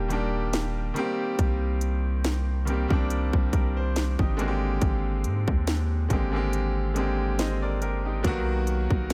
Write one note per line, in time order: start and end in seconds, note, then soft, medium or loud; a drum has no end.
0.00 0.92 D#1 loud
0.00 0.08 D#3 medium
0.00 0.09 G3 medium
0.00 0.11 A#3 medium
0.00 0.12 D4 medium
0.00 0.13 G4 medium
0.08 0.92 D#3 medium
0.08 0.94 G3 medium
0.08 0.95 A#3 medium
0.08 0.97 D4 medium
0.08 closed hi-hat medium
0.13 0.97 G4 medium
0.53 snare loud
0.53 closed hi-hat medium
0.94 2.46 D#3 medium
0.94 2.46 G3 medium
0.94 2.47 A#3 medium
0.94 2.47 C4 medium
0.94 closed hi-hat medium
0.99 2.48 G4 loud
1.39 2.87 C2 loud
1.39 kick loud
1.39 closed hi-hat medium
1.81 closed hi-hat medium
2.24 snare loud
2.24 closed hi-hat medium
2.65 2.86 D#3 medium
2.65 2.87 G3 medium
2.65 2.88 A#3 medium
2.65 2.88 C4 medium
2.65 closed hi-hat medium
2.70 2.89 G4 medium
2.88 3.32 C2 loud
2.88 3.44 D#3 medium
2.88 3.45 G3 medium
2.88 3.45 A#3 medium
2.88 3.46 C4 medium
2.88 kick loud
2.93 3.47 D4 loud
3.10 closed hi-hat medium
3.33 3.52 C2 loud
3.33 kick loud
3.53 4.16 C2 loud
3.53 3.75 G4 medium
3.53 3.75 A#4 medium
3.53 kick loud
3.53 closed hi-hat medium
3.77 4.17 C5 medium
3.96 snare loud
3.96 closed hi-hat medium
4.19 4.79 G#1 loud
4.19 4.60 D#4 medium
4.19 4.46 G4 medium
4.19 kick loud
4.37 5.88 D3 medium
4.37 5.89 G#3 medium
4.37 5.90 A#3 medium
4.37 5.90 C4 medium
4.37 closed hi-hat medium
4.41 4.47 F#4 medium
4.48 5.94 G4 loud
4.81 5.26 G#1 loud
4.81 kick loud
4.81 closed hi-hat medium
5.24 5.47 G#2 medium
5.24 closed hi-hat medium
5.48 6.08 D#2 loud
5.48 kick loud
5.67 snare loud
5.67 closed hi-hat medium
6.08 7.84 G#1 loud
6.08 6.29 D3 medium
6.08 6.30 G#3 medium
6.08 6.31 A#3 medium
6.08 6.31 C4 medium
6.08 kick medium
6.08 closed hi-hat medium
6.13 6.32 G4 medium
6.32 6.87 D3 medium
6.32 6.88 G#3 medium
6.32 6.88 A#3 medium
6.32 6.89 C4 medium
6.36 6.90 G4 medium
6.53 closed hi-hat medium
6.94 8.08 D3 medium
6.94 8.09 G#3 medium
6.94 8.09 A#3 medium
6.94 8.10 C4 medium
6.94 closed hi-hat medium
6.99 7.40 G4 medium
7.39 7.61 C5 medium
7.39 7.61 D#5 medium
7.39 snare loud
7.39 closed hi-hat medium
7.62 7.80 A#4 medium
7.62 7.81 D5 medium
7.82 8.06 G1 loud
7.82 8.04 G4 medium
7.82 8.04 A#4 medium
7.82 closed hi-hat medium
8.05 8.24 G#1 loud
8.05 8.46 D#4 medium
8.05 8.46 G4 medium
8.23 8.88 B1 loud
8.23 8.31 D3 medium
8.23 9.13 F#3 loud
8.23 9.13 A#3 loud
8.23 9.13 B3 loud
8.23 kick loud
8.23 closed hi-hat medium
8.27 9.13 D#3 loud
8.27 9.13 F#4 loud
8.67 closed hi-hat medium
8.90 9.13 B1 loud
8.90 kick loud